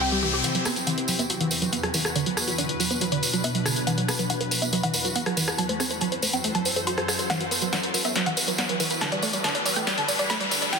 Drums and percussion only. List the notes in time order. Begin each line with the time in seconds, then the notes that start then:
0.44 closed hi-hat, tambourine
0.55 closed hi-hat
0.65 cross-stick, open hi-hat, tambourine
0.76 closed hi-hat, tambourine
0.87 closed hi-hat, tambourine
0.98 closed hi-hat
1.08 open hi-hat, tambourine
1.19 closed hi-hat, tambourine
1.30 closed hi-hat, tambourine
1.41 closed hi-hat
1.51 open hi-hat, tambourine
1.62 closed hi-hat, tambourine
1.72 closed hi-hat, tambourine
1.83 cross-stick, closed hi-hat
1.94 open hi-hat, tambourine
2.05 cross-stick, tambourine
2.16 closed hi-hat, tambourine
2.26 closed hi-hat
2.37 cross-stick, open hi-hat, tambourine
2.48 closed hi-hat, tambourine
2.58 closed hi-hat, tambourine
2.69 closed hi-hat
2.80 open hi-hat, tambourine
2.91 closed hi-hat, tambourine
3.01 closed hi-hat, tambourine
3.12 closed hi-hat
3.23 open hi-hat, tambourine
3.33 closed hi-hat, tambourine
3.44 closed hi-hat, tambourine
3.55 closed hi-hat
3.66 cross-stick, open hi-hat, tambourine
3.76 closed hi-hat, tambourine
3.87 closed hi-hat, tambourine
3.98 closed hi-hat
4.08 cross-stick, open hi-hat, tambourine
4.19 closed hi-hat, tambourine
4.30 closed hi-hat, tambourine
4.41 closed hi-hat
4.51 open hi-hat, tambourine
4.62 closed hi-hat, tambourine
4.73 closed hi-hat, tambourine
4.83 closed hi-hat
4.94 open hi-hat, tambourine
5.05 closed hi-hat, tambourine
5.16 closed hi-hat, tambourine
5.26 cross-stick, closed hi-hat
5.37 open hi-hat, tambourine
5.47 cross-stick, closed hi-hat, tambourine
5.58 closed hi-hat, tambourine
5.69 closed hi-hat
5.80 cross-stick, open hi-hat, tambourine
5.90 closed hi-hat, tambourine
6.01 closed hi-hat, tambourine
6.12 closed hi-hat
6.22 open hi-hat, tambourine
6.33 closed hi-hat, tambourine
6.44 closed hi-hat, tambourine
6.55 closed hi-hat
6.65 open hi-hat, tambourine
6.76 closed hi-hat, tambourine
6.87 closed hi-hat, tambourine
6.98 cross-stick, closed hi-hat
7.08 cross-stick, open hi-hat, tambourine
7.19 closed hi-hat, tambourine
7.30 snare, closed hi-hat, tambourine
7.41 closed hi-hat
7.51 open hi-hat, tambourine
7.61 closed hi-hat, tambourine
7.73 snare, closed hi-hat, tambourine
7.83 closed hi-hat
7.94 open hi-hat, tambourine
8.05 closed hi-hat, tambourine
8.15 snare, closed hi-hat, tambourine
8.26 closed hi-hat
8.37 open hi-hat, tambourine
8.48 closed hi-hat, tambourine
8.58 snare, closed hi-hat, tambourine
8.69 closed hi-hat
8.80 open hi-hat, tambourine
8.90 closed hi-hat, tambourine
9.01 snare, closed hi-hat, tambourine
9.12 closed hi-hat
9.23 open hi-hat, tambourine
9.33 closed hi-hat, tambourine
9.44 snare, closed hi-hat, tambourine
9.55 closed hi-hat
9.66 open hi-hat, tambourine
9.76 closed hi-hat, tambourine
9.87 snare, closed hi-hat, tambourine
9.98 closed hi-hat
10.08 open hi-hat, tambourine
10.19 closed hi-hat, tambourine
10.30 snare, closed hi-hat, tambourine
10.41 closed hi-hat
10.51 open hi-hat, tambourine
10.62 closed hi-hat, tambourine
10.73 snare, closed hi-hat